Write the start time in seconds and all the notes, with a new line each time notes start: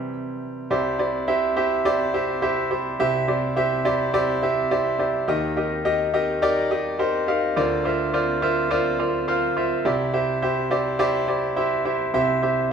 Already playing: C3 E3 G3 E4 C5
0.70 C2 C3 E4 G4 C5 D5
0.99 E4 G4 C5 D5
1.28 E4 G4 C5 E5
1.56 E4 G4 C5 E5
1.85 E4 G4 C5 D5
2.14 E4 G4 C5 E5
2.42 E4 G4 C5 E5
2.71 E4 G4 C5 E5
3.00 C2 C3 E4 G4 C5 E5
3.28 E4 G4 C5 D5
3.56 E4 G4 C5 E5
3.85 E4 G4 C5 D5
4.13 E4 G4 C5 D5
4.42 E4 G4 C5 E5
4.71 E4 G4 C5 D5
4.99 E4 G4 C5 D5
5.28 D#2 D#3 D#4 G4 A#4 D#5
5.57 D#4 G4 A#4 D#5
5.85 D#4 G4 A#4 D#5
6.14 D#4 G4 A#4 D#5
6.42 D#4 G4 A#4 D5
6.71 D#4 G4 A#4 D#5
6.99 D#4 G4 A#4 C5
7.28 D#4 G4 A#4 F5
7.56 D2 D3 F4 A#4 C5 D5
7.85 F4 A#4 C5 E5
8.14 F4 A#4 C5 D5
8.42 F4 A#4 C5 E5
8.71 F4 A#4 C5 D5
8.99 F4 A#4 C5 D5
9.28 F4 A#4 C5 F5
9.57 F4 A#4 C5 E5
9.85 C2 C3 E4 G4 C5 D5
10.13 E4 G4 C5 E5
10.42 E4 G4 C5 E5
10.71 E4 G4 C5 D5
10.99 E4 G4 C5 D5
11.28 E4 G4 C5 D5
11.56 E4 G4 C5 E5
11.85 E4 G4 C5 E5
12.14 C2 C3 E4 G4 C5 E5
12.42 E4 G4 C5 E5